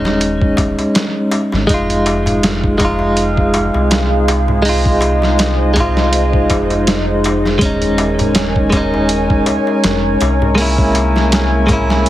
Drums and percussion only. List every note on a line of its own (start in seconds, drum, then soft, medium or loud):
0.05 snare soft
0.05 darbuka tek soft
0.20 closed hi-hat medium
0.20 darbuka tek soft
0.41 kick medium
0.57 kick medium
0.57 closed hi-hat medium
0.57 darbuka tek medium
0.79 closed hi-hat soft
0.79 darbuka tek soft
0.94 snare loud
0.94 closed hi-hat medium
0.94 darbuka tek soft
1.31 closed hi-hat medium
1.31 darbuka tek medium
1.52 snare soft
1.52 darbuka tek soft
1.69 kick loud
1.69 closed hi-hat medium
1.69 darbuka tek soft
1.90 closed hi-hat soft
2.06 closed hi-hat medium
2.06 darbuka tek medium
2.26 closed hi-hat soft
2.26 darbuka tek medium
2.26 darbuka dum soft
2.43 snare loud
2.43 closed hi-hat medium
2.43 darbuka tek soft
2.64 kick medium
2.79 kick medium
2.79 closed hi-hat medium
2.79 darbuka tek medium
2.99 darbuka tek soft
3.16 closed hi-hat medium
3.16 darbuka tek soft
3.37 kick medium
3.54 closed hi-hat medium
3.54 darbuka tek medium
3.74 darbuka tek soft
3.91 snare loud
3.91 closed hi-hat medium
3.91 darbuka tek soft
4.28 closed hi-hat medium
4.28 darbuka tek loud
4.48 darbuka tek soft
4.48 darbuka dum medium
4.65 open hi-hat medium
4.65 darbuka tek soft
4.85 kick medium
5.01 closed hi-hat medium
5.01 darbuka tek medium
5.22 snare soft
5.22 darbuka tek soft
5.38 snare loud
5.38 closed hi-hat medium
5.38 darbuka tek soft
5.75 kick medium
5.75 closed hi-hat medium
5.75 darbuka tek medium
5.75 darbuka dum medium
5.97 snare soft
5.97 darbuka tek soft
6.13 closed hi-hat medium
6.13 darbuka tek soft
6.33 kick medium
6.50 kick medium
6.50 closed hi-hat medium
6.50 darbuka tek medium
6.70 closed hi-hat soft
6.70 darbuka tek soft
6.87 snare loud
6.87 closed hi-hat medium
6.87 darbuka tek soft
7.24 closed hi-hat medium
7.24 darbuka tek medium
7.45 snare soft
7.45 darbuka tek soft
7.61 kick loud
7.61 closed hi-hat medium
7.61 darbuka tek soft
7.82 closed hi-hat soft
7.98 closed hi-hat medium
7.98 darbuka tek medium
8.19 closed hi-hat soft
8.19 darbuka tek soft
8.19 darbuka dum medium
8.35 snare loud
8.35 closed hi-hat medium
8.35 darbuka tek soft
8.56 kick medium
8.72 kick medium
8.72 closed hi-hat medium
8.72 darbuka tek medium
8.94 darbuka tek soft
9.09 closed hi-hat medium
9.09 darbuka tek soft
9.30 kick medium
9.46 closed hi-hat medium
9.46 darbuka tek medium
9.67 darbuka tek soft
9.84 snare loud
9.84 closed hi-hat medium
9.84 darbuka tek soft
10.21 closed hi-hat medium
10.21 darbuka tek medium
10.42 darbuka tek soft
10.42 darbuka dum medium
10.58 open hi-hat medium
10.58 darbuka tek soft
10.78 kick loud
10.95 closed hi-hat medium
10.95 darbuka tek medium
11.16 snare soft
11.16 darbuka tek soft
11.32 snare loud
11.32 closed hi-hat medium
11.32 darbuka tek soft
11.68 kick medium
11.68 closed hi-hat medium
11.68 darbuka tek medium
11.68 darbuka dum medium
11.90 snare soft
11.90 darbuka tek medium
12.06 closed hi-hat medium